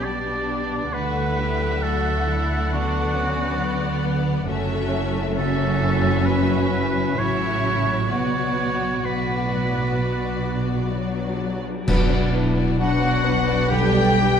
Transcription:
0.00 0.90 B1 soft
0.00 0.90 B2 soft
0.00 0.98 B2 soft
0.00 0.70 G3 soft
0.00 0.48 B3 soft
0.00 0.90 B3 soft
0.00 0.94 D4 medium
0.00 0.94 G4 soft
0.00 0.98 B4 soft
0.00 0.90 D5 soft
0.00 0.95 D5 medium
0.49 0.98 B3 soft
0.71 0.98 G3 soft
0.93 4.44 D2 soft
0.93 2.71 D3 soft
0.93 4.44 D3 soft
0.93 2.72 A3 soft
0.93 1.38 F#4 medium
0.93 1.84 B4 medium
0.93 2.72 E5 soft
0.93 4.45 F#5 soft
1.17 2.05 E4 soft
1.39 1.84 G4 soft
1.39 2.76 A4 soft
1.62 2.27 F#3 soft
1.83 4.52 A3 soft
1.83 2.28 F#4 medium
1.83 2.72 A4 medium
2.06 2.76 E4 soft
2.28 3.37 F#3 soft
2.28 2.72 E4 medium
2.50 4.52 B3 soft
2.71 4.52 D3 medium
2.71 4.45 B3 medium
2.71 3.16 D4 medium
2.71 4.01 F#4 medium
2.71 4.45 D5 medium
3.15 3.60 C#4 medium
3.57 4.47 B3 medium
3.57 4.24 D4 soft
3.82 7.72 F#4 soft
4.04 5.14 F#3 soft
4.26 4.52 D4 soft
4.46 7.14 F#1 medium
4.46 7.14 F#2 medium
4.46 8.15 F#2 medium
4.46 5.34 A3 medium
4.46 5.33 C#4 medium
4.46 5.33 F#4 medium
4.50 5.34 E5 medium
4.71 5.58 E4 medium
4.93 6.71 C#5 medium
5.16 5.80 F#3 soft
5.34 6.02 C#3 medium
5.34 7.16 C#4 medium
5.34 7.14 C#4 medium
5.34 7.14 F#4 medium
5.34 6.27 A4 medium
5.39 7.15 E5 medium
5.60 6.49 E4 medium
5.82 6.25 F#3 medium
6.03 7.18 C#3 soft
6.25 6.94 F#3 medium
6.25 7.20 B4 medium
6.50 7.40 E4 soft
6.95 7.64 F#3 soft
7.16 8.09 A1 medium
7.16 8.09 A2 medium
7.16 7.87 C#3 soft
7.16 8.09 C#4 medium
7.16 8.10 E4 medium
7.16 8.09 F#4 medium
7.16 8.11 C#5 medium
7.16 8.09 E5 medium
7.65 8.81 F#3 soft
7.88 8.15 C#3 soft
8.10 11.67 B1 medium
8.10 8.95 B2 medium
8.10 11.87 B2 medium
8.10 9.04 B3 medium
8.10 11.36 F#4 medium
8.10 9.03 F#4 soft
8.10 9.07 C#5 medium
8.10 9.02 D5 medium
8.34 9.28 D4 soft
8.58 10.46 B4 soft
8.82 9.52 F#3 soft
9.04 9.95 A2 medium
9.04 11.63 B3 soft
9.04 9.75 B3 soft
9.04 11.62 F#4 medium
9.04 10.93 B4 medium
9.04 11.62 D5 medium
9.29 10.21 D4 soft
9.53 9.99 F#3 soft
9.77 10.93 B3 soft
10.00 10.94 B2 medium
10.00 10.69 F#3 soft
10.47 12.33 B4 soft
10.70 11.40 F#3 soft
10.93 11.87 F#3 medium
10.93 11.63 B3 soft
11.17 12.10 D4 soft
11.41 12.79 F#3 soft
11.64 12.56 B3 soft
11.87 14.40 B1 medium
11.87 13.21 B2 medium
11.87 13.70 B2 medium
11.87 12.09 B3 medium
11.87 12.09 D4 medium
11.87 12.30 F#4 medium
11.87 12.09 B4 medium
11.87 concert bass drum medium
11.87 crash medium
12.10 12.31 B3 medium
12.10 12.32 D4 medium
12.10 13.02 D4 soft
12.10 12.34 F#4 medium
12.10 12.34 D5 medium
12.33 12.55 B3 medium
12.33 12.55 D4 medium
12.33 12.57 D4 medium
12.33 12.78 E4 medium
12.33 14.40 B4 medium
12.33 12.57 B4 medium
12.56 12.77 B3 medium
12.56 13.24 B3 soft
12.56 12.77 D4 soft
12.56 12.80 F#4 medium
12.56 12.80 D5 medium
12.79 13.67 F#3 medium
12.79 13.48 F#3 medium
12.79 13.00 B3 medium
12.79 13.00 D4 medium
12.79 13.25 D4 medium
12.79 13.01 D4 medium
12.79 13.72 F#4 medium
12.79 13.01 B4 medium
12.79 13.72 F#5 medium
12.79 13.68 F#5 medium
13.02 13.24 B3 medium
13.02 13.24 D4 medium
13.02 13.25 F#4 medium
13.02 13.25 D5 medium
13.24 14.40 B3 medium
13.24 13.47 B3 medium
13.24 13.48 D4 medium
13.24 13.47 D4 medium
13.24 13.70 B4 medium
13.24 13.48 B4 medium
13.48 13.75 F#3 soft
13.48 13.71 B3 medium
13.48 13.69 D4 medium
13.48 13.72 F#4 medium
13.48 13.72 D5 medium
13.70 14.40 B2 medium
13.70 14.40 G3 medium
13.70 13.93 G3 medium
13.70 13.92 D4 medium
13.70 14.40 G4 medium
13.70 13.93 G4 medium
13.70 14.18 A4 medium
13.70 13.93 B4 medium
13.70 14.40 G5 medium
13.70 14.40 G5 loud
13.94 14.18 B3 medium
13.94 14.18 D4 medium
13.94 14.40 D4 medium
13.94 14.18 G4 medium
13.94 14.18 D5 medium
14.18 14.40 G3 medium
14.18 14.40 D4 medium
14.18 14.40 G4 medium
14.18 14.40 B4 medium

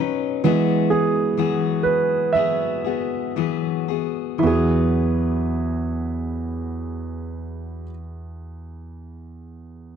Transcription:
0.00 0.43 F#3 soft
0.00 0.45 C#4 soft
0.00 0.44 D#4 soft
0.00 0.44 B4 soft
0.00 0.46 B4 medium
0.44 0.90 E3 medium
0.44 1.82 E3 soft
0.44 0.91 F#3 medium
0.44 1.82 G#3 soft
0.44 0.91 B3 medium
0.44 1.83 B3 soft
0.44 0.90 F#4 medium
0.44 0.89 G#4 medium
0.90 1.37 B3 soft
0.90 1.38 F#4 soft
0.90 1.38 G#4 soft
0.90 1.89 G#4 medium
1.37 2.38 E3 medium
1.37 2.34 F#3 medium
1.37 2.35 B3 medium
1.37 2.36 F#4 medium
1.37 2.36 G#4 medium
1.83 1.94 B4 medium
2.33 2.85 F#3 soft
2.33 2.85 B3 soft
2.33 2.85 F#4 soft
2.33 3.83 E5 medium
2.37 2.83 G#4 medium
2.84 3.36 B3 soft
2.84 3.36 F#4 soft
2.84 3.36 G#4 soft
3.36 3.88 E3 soft
3.36 3.89 F#3 soft
3.36 3.89 B3 soft
3.36 3.89 F#4 soft
3.36 3.87 G#4 medium
3.88 4.43 B3 soft
3.88 4.43 F#4 soft
3.88 4.42 G#4 soft
4.38 7.88 E3 soft
4.38 7.81 E4 soft
4.43 7.85 E2 soft
4.43 7.93 F#3 soft
4.43 7.96 B3 soft
4.43 7.85 F#4 soft
4.43 7.88 G#4 soft
4.50 8.00 F#4 soft
4.50 8.03 G#4 soft

